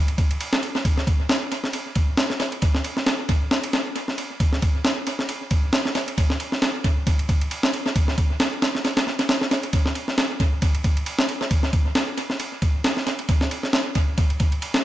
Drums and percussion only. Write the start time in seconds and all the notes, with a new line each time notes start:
0.08 ride
0.18 kick, ride
0.31 ride
0.41 ride
0.53 snare
0.63 ride
0.75 snare
0.85 kick, ride
0.98 snare
1.07 kick, ride
1.29 snare, ride
1.52 ride
1.64 snare
1.73 ride
1.95 kick, ride
2.17 snare, ride
2.30 snare
2.40 snare, ride
2.52 ride
2.62 kick, ride
2.75 snare
2.84 ride
2.97 snare
3.07 snare, ride
3.29 kick, ride
3.51 snare
3.64 ride
3.73 snare, ride
3.96 ride
4.08 snare
4.18 ride
4.40 kick, ride
4.53 snare
4.62 kick, ride
4.85 snare, ride
5.07 ride
5.19 snare
5.29 ride
5.51 kick, ride
5.73 snare, ride
5.85 snare
5.95 snare, ride
6.08 ride
6.18 kick, ride
6.30 snare
6.40 ride
6.52 snare
6.62 snare, ride
6.84 kick, ride
7.07 kick, ride
7.19 ride
7.29 kick, ride
7.41 ride
7.51 ride
7.63 snare
7.74 ride
7.86 snare
7.96 kick, ride
8.08 snare
8.18 kick, ride
8.40 snare, ride
8.62 snare, ride
8.75 snare
8.85 snare, ride
8.97 snare, ride
9.07 snare
9.19 snare, ride
9.29 snare, ride
9.41 snare
9.51 snare, ride
9.63 ride
9.73 kick, ride
9.86 snare
9.95 ride
10.08 snare
10.18 snare, ride
10.40 kick, ride
10.62 kick, ride
10.75 ride
10.84 kick, ride
10.97 ride
11.06 ride
11.19 snare
11.29 ride
11.41 snare
11.51 kick, ride
11.63 snare
11.73 kick, ride
11.95 snare, ride
12.18 ride
12.30 snare
12.40 ride
12.62 kick, ride
12.84 snare, ride
12.97 snare
13.07 snare, ride
13.19 ride
13.29 kick, ride
13.41 snare
13.51 ride
13.63 snare
13.73 snare, ride
13.95 kick, ride
14.18 kick, ride
14.30 ride
14.40 kick, ride
14.52 ride
14.62 ride
14.74 snare